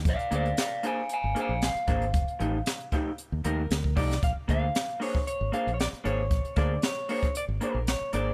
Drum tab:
HH |xxxxx-x-x-x-xxxx|xxx-xxx-x-x-x-ox|x-x-xxo-x-xxxxx-|xxx-x-oxx-x-x-x-|
SD |----o-------o---|----o-------o--o|----o-------o---|----o-------o---|
BD |o-------------o-|o-----o------oo-|o-o----o--------|o-o----o--------|